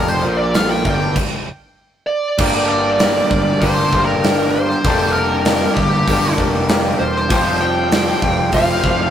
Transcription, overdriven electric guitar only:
0, 0, Header, 1, 2, 480
1, 0, Start_track
1, 0, Key_signature, -2, "minor"
1, 0, Tempo, 614754
1, 1865, Time_signature, 4, 2, 24, 8
1, 7107, End_track
2, 0, Start_track
2, 0, Title_t, "Overdriven electric guitar"
2, 0, Program_c, 0, 29
2, 0, Note_on_c, 0, 41, 101
2, 181, Note_off_c, 0, 41, 0
2, 182, Note_on_c, 0, 46, 103
2, 657, Note_off_c, 0, 46, 0
2, 663, Note_on_c, 0, 43, 102
2, 897, Note_off_c, 0, 43, 0
2, 1856, Note_on_c, 0, 43, 89
2, 1866, Note_on_c, 0, 50, 104
2, 1866, Note_on_c, 0, 55, 110
2, 1871, Note_on_c, 0, 58, 97
2, 1883, Note_on_c, 0, 62, 105
2, 1884, Note_on_c, 0, 67, 98
2, 2811, Note_off_c, 0, 50, 0
2, 2815, Note_off_c, 0, 43, 0
2, 2818, Note_on_c, 0, 43, 73
2, 2827, Note_off_c, 0, 55, 0
2, 2829, Note_on_c, 0, 50, 81
2, 2830, Note_on_c, 0, 55, 84
2, 2833, Note_off_c, 0, 58, 0
2, 2836, Note_on_c, 0, 58, 76
2, 2844, Note_off_c, 0, 62, 0
2, 2844, Note_off_c, 0, 67, 0
2, 2847, Note_on_c, 0, 62, 80
2, 2847, Note_on_c, 0, 67, 81
2, 3767, Note_off_c, 0, 43, 0
2, 3772, Note_off_c, 0, 50, 0
2, 3776, Note_off_c, 0, 58, 0
2, 3781, Note_off_c, 0, 62, 0
2, 3781, Note_on_c, 0, 43, 96
2, 3789, Note_off_c, 0, 55, 0
2, 3789, Note_on_c, 0, 50, 92
2, 3792, Note_on_c, 0, 55, 91
2, 3796, Note_on_c, 0, 58, 108
2, 3805, Note_on_c, 0, 62, 104
2, 3810, Note_off_c, 0, 67, 0
2, 3813, Note_on_c, 0, 67, 105
2, 4728, Note_off_c, 0, 43, 0
2, 4732, Note_off_c, 0, 50, 0
2, 4735, Note_off_c, 0, 58, 0
2, 4737, Note_on_c, 0, 43, 78
2, 4740, Note_off_c, 0, 62, 0
2, 4747, Note_on_c, 0, 50, 67
2, 4753, Note_off_c, 0, 55, 0
2, 4756, Note_on_c, 0, 55, 75
2, 4761, Note_on_c, 0, 58, 78
2, 4764, Note_on_c, 0, 62, 80
2, 4766, Note_off_c, 0, 67, 0
2, 4769, Note_on_c, 0, 67, 81
2, 5686, Note_off_c, 0, 43, 0
2, 5691, Note_off_c, 0, 50, 0
2, 5694, Note_on_c, 0, 53, 99
2, 5698, Note_off_c, 0, 58, 0
2, 5700, Note_off_c, 0, 62, 0
2, 5706, Note_off_c, 0, 55, 0
2, 5710, Note_on_c, 0, 55, 96
2, 5717, Note_off_c, 0, 67, 0
2, 5717, Note_on_c, 0, 60, 90
2, 5725, Note_on_c, 0, 65, 97
2, 6644, Note_off_c, 0, 53, 0
2, 6656, Note_on_c, 0, 53, 71
2, 6660, Note_off_c, 0, 65, 0
2, 6667, Note_off_c, 0, 55, 0
2, 6670, Note_on_c, 0, 55, 86
2, 6674, Note_off_c, 0, 60, 0
2, 6677, Note_on_c, 0, 60, 76
2, 6682, Note_on_c, 0, 65, 82
2, 7107, Note_off_c, 0, 53, 0
2, 7107, Note_off_c, 0, 55, 0
2, 7107, Note_off_c, 0, 60, 0
2, 7107, Note_off_c, 0, 65, 0
2, 7107, End_track
0, 0, End_of_file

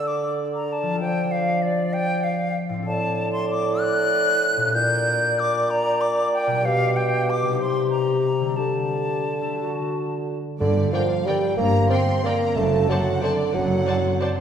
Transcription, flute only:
0, 0, Header, 1, 2, 480
1, 0, Start_track
1, 0, Key_signature, -2, "minor"
1, 0, Tempo, 310238
1, 110, Time_signature, 3, 2, 24, 8
1, 4917, Tempo, 315956
1, 12117, Tempo, 335008
1, 16917, Tempo, 326087
1, 21534, End_track
2, 0, Start_track
2, 0, Title_t, "Flute"
2, 0, Program_c, 0, 73
2, 113, Note_on_c, 0, 86, 67
2, 515, Note_off_c, 0, 86, 0
2, 844, Note_on_c, 0, 82, 66
2, 1119, Note_on_c, 0, 81, 60
2, 1142, Note_off_c, 0, 82, 0
2, 1548, Note_off_c, 0, 81, 0
2, 1557, Note_on_c, 0, 79, 72
2, 2029, Note_on_c, 0, 77, 71
2, 2052, Note_off_c, 0, 79, 0
2, 2511, Note_on_c, 0, 74, 72
2, 2534, Note_off_c, 0, 77, 0
2, 2989, Note_on_c, 0, 79, 90
2, 3013, Note_off_c, 0, 74, 0
2, 3459, Note_on_c, 0, 77, 67
2, 3482, Note_off_c, 0, 79, 0
2, 3966, Note_off_c, 0, 77, 0
2, 4436, Note_on_c, 0, 81, 79
2, 5111, Note_off_c, 0, 81, 0
2, 5139, Note_on_c, 0, 84, 81
2, 5392, Note_off_c, 0, 84, 0
2, 5403, Note_on_c, 0, 86, 87
2, 5865, Note_on_c, 0, 90, 98
2, 5888, Note_off_c, 0, 86, 0
2, 7282, Note_off_c, 0, 90, 0
2, 7291, Note_on_c, 0, 91, 98
2, 8281, Note_on_c, 0, 86, 85
2, 8304, Note_off_c, 0, 91, 0
2, 8754, Note_on_c, 0, 82, 85
2, 8777, Note_off_c, 0, 86, 0
2, 9219, Note_on_c, 0, 86, 78
2, 9242, Note_off_c, 0, 82, 0
2, 9697, Note_off_c, 0, 86, 0
2, 9706, Note_on_c, 0, 79, 80
2, 10192, Note_on_c, 0, 77, 82
2, 10215, Note_off_c, 0, 79, 0
2, 10667, Note_on_c, 0, 79, 73
2, 10689, Note_off_c, 0, 77, 0
2, 11179, Note_on_c, 0, 86, 75
2, 11202, Note_off_c, 0, 79, 0
2, 11639, Note_off_c, 0, 86, 0
2, 11648, Note_on_c, 0, 84, 70
2, 12091, Note_off_c, 0, 84, 0
2, 12100, Note_on_c, 0, 82, 68
2, 13043, Note_on_c, 0, 81, 62
2, 13065, Note_off_c, 0, 82, 0
2, 15484, Note_off_c, 0, 81, 0
2, 21534, End_track
0, 0, End_of_file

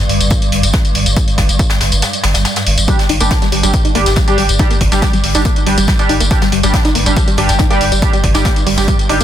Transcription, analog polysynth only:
0, 0, Header, 1, 2, 480
1, 0, Start_track
1, 0, Tempo, 428571
1, 1305, Time_signature, 4, 2, 24, 8
1, 10348, End_track
2, 0, Start_track
2, 0, Title_t, "Analog polysynth"
2, 0, Program_c, 0, 90
2, 3225, Note_on_c, 0, 55, 81
2, 3225, Note_on_c, 0, 62, 75
2, 3225, Note_on_c, 0, 67, 91
2, 3320, Note_off_c, 0, 55, 0
2, 3320, Note_off_c, 0, 62, 0
2, 3320, Note_off_c, 0, 67, 0
2, 3588, Note_on_c, 0, 67, 91
2, 3589, Note_on_c, 0, 55, 83
2, 3589, Note_on_c, 0, 62, 72
2, 3733, Note_off_c, 0, 55, 0
2, 3733, Note_off_c, 0, 62, 0
2, 3733, Note_off_c, 0, 67, 0
2, 4068, Note_on_c, 0, 55, 77
2, 4069, Note_on_c, 0, 62, 70
2, 4069, Note_on_c, 0, 67, 85
2, 4158, Note_off_c, 0, 55, 0
2, 4158, Note_off_c, 0, 62, 0
2, 4158, Note_off_c, 0, 67, 0
2, 4425, Note_on_c, 0, 55, 72
2, 4425, Note_on_c, 0, 62, 69
2, 4425, Note_on_c, 0, 67, 78
2, 4575, Note_off_c, 0, 55, 0
2, 4576, Note_off_c, 0, 62, 0
2, 4576, Note_off_c, 0, 67, 0
2, 4789, Note_on_c, 0, 55, 94
2, 4789, Note_on_c, 0, 62, 85
2, 4789, Note_on_c, 0, 67, 108
2, 4933, Note_off_c, 0, 55, 0
2, 4933, Note_off_c, 0, 62, 0
2, 4933, Note_off_c, 0, 67, 0
2, 5145, Note_on_c, 0, 55, 79
2, 5145, Note_on_c, 0, 62, 74
2, 5145, Note_on_c, 0, 67, 91
2, 5240, Note_off_c, 0, 55, 0
2, 5240, Note_off_c, 0, 62, 0
2, 5240, Note_off_c, 0, 67, 0
2, 5509, Note_on_c, 0, 55, 83
2, 5509, Note_on_c, 0, 62, 75
2, 5509, Note_on_c, 0, 67, 90
2, 5653, Note_off_c, 0, 55, 0
2, 5653, Note_off_c, 0, 62, 0
2, 5653, Note_off_c, 0, 67, 0
2, 5989, Note_on_c, 0, 55, 75
2, 5989, Note_on_c, 0, 62, 71
2, 5989, Note_on_c, 0, 67, 82
2, 6078, Note_off_c, 0, 55, 0
2, 6078, Note_off_c, 0, 62, 0
2, 6078, Note_off_c, 0, 67, 0
2, 6345, Note_on_c, 0, 55, 75
2, 6345, Note_on_c, 0, 67, 79
2, 6346, Note_on_c, 0, 62, 69
2, 6496, Note_off_c, 0, 55, 0
2, 6496, Note_off_c, 0, 62, 0
2, 6496, Note_off_c, 0, 67, 0
2, 6710, Note_on_c, 0, 55, 94
2, 6710, Note_on_c, 0, 62, 90
2, 6710, Note_on_c, 0, 67, 106
2, 6853, Note_off_c, 0, 55, 0
2, 6853, Note_off_c, 0, 62, 0
2, 6853, Note_off_c, 0, 67, 0
2, 7066, Note_on_c, 0, 55, 80
2, 7066, Note_on_c, 0, 62, 76
2, 7066, Note_on_c, 0, 67, 90
2, 7161, Note_off_c, 0, 55, 0
2, 7161, Note_off_c, 0, 62, 0
2, 7161, Note_off_c, 0, 67, 0
2, 7430, Note_on_c, 0, 62, 77
2, 7430, Note_on_c, 0, 67, 94
2, 7431, Note_on_c, 0, 55, 83
2, 7574, Note_off_c, 0, 55, 0
2, 7574, Note_off_c, 0, 62, 0
2, 7574, Note_off_c, 0, 67, 0
2, 7910, Note_on_c, 0, 55, 77
2, 7910, Note_on_c, 0, 62, 69
2, 7910, Note_on_c, 0, 67, 85
2, 7998, Note_off_c, 0, 55, 0
2, 7998, Note_off_c, 0, 62, 0
2, 7998, Note_off_c, 0, 67, 0
2, 8265, Note_on_c, 0, 55, 73
2, 8265, Note_on_c, 0, 62, 69
2, 8265, Note_on_c, 0, 67, 82
2, 8415, Note_off_c, 0, 62, 0
2, 8415, Note_off_c, 0, 67, 0
2, 8416, Note_off_c, 0, 55, 0
2, 8629, Note_on_c, 0, 55, 98
2, 8629, Note_on_c, 0, 62, 85
2, 8629, Note_on_c, 0, 67, 103
2, 8773, Note_off_c, 0, 55, 0
2, 8773, Note_off_c, 0, 62, 0
2, 8773, Note_off_c, 0, 67, 0
2, 8984, Note_on_c, 0, 55, 82
2, 8984, Note_on_c, 0, 62, 77
2, 8984, Note_on_c, 0, 67, 93
2, 9080, Note_off_c, 0, 55, 0
2, 9080, Note_off_c, 0, 62, 0
2, 9080, Note_off_c, 0, 67, 0
2, 9349, Note_on_c, 0, 55, 85
2, 9349, Note_on_c, 0, 62, 75
2, 9349, Note_on_c, 0, 67, 90
2, 9493, Note_off_c, 0, 55, 0
2, 9493, Note_off_c, 0, 62, 0
2, 9493, Note_off_c, 0, 67, 0
2, 9828, Note_on_c, 0, 55, 77
2, 9828, Note_on_c, 0, 62, 70
2, 9828, Note_on_c, 0, 67, 80
2, 9917, Note_off_c, 0, 55, 0
2, 9917, Note_off_c, 0, 62, 0
2, 9917, Note_off_c, 0, 67, 0
2, 10184, Note_on_c, 0, 55, 100
2, 10184, Note_on_c, 0, 62, 88
2, 10184, Note_on_c, 0, 67, 108
2, 10280, Note_off_c, 0, 55, 0
2, 10280, Note_off_c, 0, 62, 0
2, 10280, Note_off_c, 0, 67, 0
2, 10348, End_track
0, 0, End_of_file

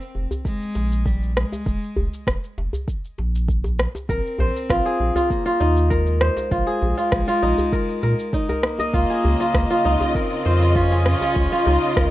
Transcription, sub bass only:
0, 0, Header, 1, 2, 480
1, 0, Start_track
1, 0, Tempo, 606061
1, 1319, Time_signature, 4, 2, 24, 8
1, 9588, End_track
2, 0, Start_track
2, 0, Title_t, "Sub bass"
2, 0, Program_c, 0, 38
2, 120, Note_on_c, 0, 29, 82
2, 209, Note_off_c, 0, 29, 0
2, 599, Note_on_c, 0, 34, 90
2, 1147, Note_off_c, 0, 34, 0
2, 1318, Note_on_c, 0, 29, 88
2, 1408, Note_off_c, 0, 29, 0
2, 1563, Note_on_c, 0, 29, 102
2, 1650, Note_off_c, 0, 29, 0
2, 1797, Note_on_c, 0, 29, 78
2, 1888, Note_off_c, 0, 29, 0
2, 2042, Note_on_c, 0, 29, 84
2, 2130, Note_off_c, 0, 29, 0
2, 2524, Note_on_c, 0, 34, 89
2, 3069, Note_off_c, 0, 34, 0
2, 3242, Note_on_c, 0, 34, 95
2, 3330, Note_off_c, 0, 34, 0
2, 3483, Note_on_c, 0, 34, 92
2, 3571, Note_off_c, 0, 34, 0
2, 3720, Note_on_c, 0, 34, 76
2, 3809, Note_off_c, 0, 34, 0
2, 3959, Note_on_c, 0, 34, 85
2, 4048, Note_off_c, 0, 34, 0
2, 4439, Note_on_c, 0, 39, 90
2, 4987, Note_off_c, 0, 39, 0
2, 5159, Note_on_c, 0, 34, 95
2, 5248, Note_off_c, 0, 34, 0
2, 5402, Note_on_c, 0, 34, 104
2, 5490, Note_off_c, 0, 34, 0
2, 5639, Note_on_c, 0, 34, 78
2, 5728, Note_off_c, 0, 34, 0
2, 5881, Note_on_c, 0, 34, 85
2, 5970, Note_off_c, 0, 34, 0
2, 6360, Note_on_c, 0, 46, 78
2, 6449, Note_off_c, 0, 46, 0
2, 7079, Note_on_c, 0, 37, 95
2, 7169, Note_off_c, 0, 37, 0
2, 7323, Note_on_c, 0, 37, 100
2, 7410, Note_off_c, 0, 37, 0
2, 7557, Note_on_c, 0, 37, 78
2, 7647, Note_off_c, 0, 37, 0
2, 7802, Note_on_c, 0, 37, 86
2, 7890, Note_off_c, 0, 37, 0
2, 8282, Note_on_c, 0, 41, 90
2, 8828, Note_off_c, 0, 41, 0
2, 9000, Note_on_c, 0, 37, 97
2, 9089, Note_off_c, 0, 37, 0
2, 9239, Note_on_c, 0, 37, 99
2, 9328, Note_off_c, 0, 37, 0
2, 9479, Note_on_c, 0, 37, 80
2, 9568, Note_off_c, 0, 37, 0
2, 9588, End_track
0, 0, End_of_file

